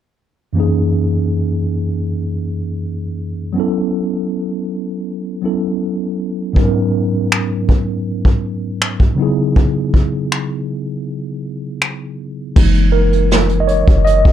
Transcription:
0.53 F#2 E3 A#3
0.57 C#4 D#4 G#4
3.53 F#3 B3 C#4
3.58 E4 A4
5.42 F#3 B3 C#4 E4 A4
6.53 G#2 F#3 B3, kick
6.57 C#4 D#4 A#4
7.32 finger snap
7.69 kick
8.25 kick
8.82 finger snap
9.00 kick
9.15 C#3 F#3 B3
9.20 D#4 E4 G#4
9.56 kick
9.94 kick
10.32 finger snap
11.82 finger snap
12.56 F#1 E3 G#3 A#3 D#4, kick, crash
12.75 closed hi-hat
12.92 A#4
13.13 closed hi-hat
13.31 snare, closed hi-hat
13.49 closed hi-hat
13.60 D#5
13.67 C#5, closed hi-hat
13.87 F#1, kick, closed hi-hat
14.05 D#5, closed hi-hat
14.25 F#1, kick

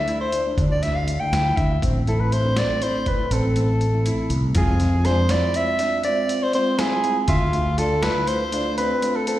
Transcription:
Already playing: A3 D4 E4 E5
0.08 E4, closed hi-hat
0.21 C5
0.32 D4, closed hi-hat
0.46 A3 D4 E4
0.57 D2 D4, kick, closed hi-hat
0.72 D5
0.83 A3 D4 E4 E5, snare, closed hi-hat
0.95 F5
1.08 closed hi-hat
1.20 A3 D4 E4 G5
1.32 D2 E4, snare, closed hi-hat
1.56 D2 E5, kick, closed hi-hat
1.82 A1 C4, kick, closed hi-hat
2.07 A3 C4 E4 A4, closed hi-hat
2.20 B4
2.31 A3 C4 E4 C5, closed hi-hat
2.44 A3 C4 D4
2.57 C4 D5, snare, closed hi-hat
2.82 E4 C5, closed hi-hat
3.06 C4 B4, kick, closed hi-hat
3.18 A3 C4 E4
3.31 A1 C4 A4, closed hi-hat
3.56 A3 C4 E4, closed hi-hat
3.81 closed hi-hat
3.93 A3 C4 E4
4.06 E4, closed hi-hat
4.30 C2, closed hi-hat
4.55 F2 G#3 C4 F4 G#4, kick, closed hi-hat
4.80 snare, closed hi-hat
5.05 G#3 C4 D4 F4 C5, snare, closed hi-hat
5.29 E4 D5, snare, closed hi-hat
5.54 G#3 C4 F4 E5, closed hi-hat
5.79 D4, snare, closed hi-hat
6.04 G#3 C4 F4 D5, closed hi-hat
6.29 closed hi-hat
6.43 C5
6.53 G#3 C4 F4 C5, closed hi-hat
6.79 E4 G#4, snare, closed hi-hat
7.02 G#3 C4 F4, closed hi-hat
7.28 D2 F4 E5, kick, closed hi-hat
7.53 A3 D4 F4, closed hi-hat
7.78 D4 A4, closed hi-hat
8.02 A3 D4 E4 F4 B4, snare, closed hi-hat
8.27 C5, closed hi-hat
8.52 A3 D4 F4, closed hi-hat
8.78 C4 B4, closed hi-hat
9.02 A3 D4 F4, closed hi-hat
9.16 A4
9.27 C4 A4, closed hi-hat

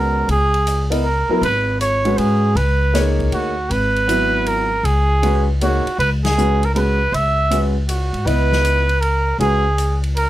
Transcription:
Already playing: C#2 G#3 B3 C#4 F#4 A#4
0.28 C#2 G#4, ride
0.54 ride
0.67 hi-hat pedal, ride
0.90 B3 E4 A#4 D#5, ride
1.04 A#4
1.29 F#3 B3 E4 A#4, muted upright bass stroke
1.41 G#1 B4, ride
1.81 C#5, hi-hat pedal, ride
2.05 G#3 C#4 F#4 B4, ride
2.18 G#2 G#4, ride
2.55 C#2 B4, ride
2.94 A#3 D#4 G#4 C#5, snare, hi-hat pedal, ride
3.19 kick, ride
3.32 D2 F#4, ride
3.70 G#1 B4, ride
3.96 ride
4.08 F#3 B3 E4 B4, hi-hat pedal, ride
4.46 A#4, ride
4.83 C#2 G#4, ride
5.23 G#3 C#4 F#4 B4, ride
5.61 A#3 D#4 F#4 G#4 C#5, hi-hat pedal, ride
5.86 muted upright bass stroke, ride
5.98 C#2 B4, ride
6.24 G#4, snare, ride
6.37 G#3 C#4 F#4 B4, hi-hat pedal
6.63 A#4, ride
6.74 G#3 C#4 F#4 G#4 A#4 B4, ride
7.12 C#2 E5, ride
7.50 G#3 C#4 F#4 B4, hi-hat pedal, ride
7.88 F#4, hi-hat pedal, ride
8.13 G#2, ride
8.26 C#2 B3 E4 B4 D#5, ride
8.52 snare
8.65 hi-hat pedal, ride
8.89 ride
9.01 A#4, ride
9.38 C#2 G#3 C#4 F#4 G#4 B4, ride
9.78 hi-hat pedal, ride
10.04 ride
10.16 A#4, ride

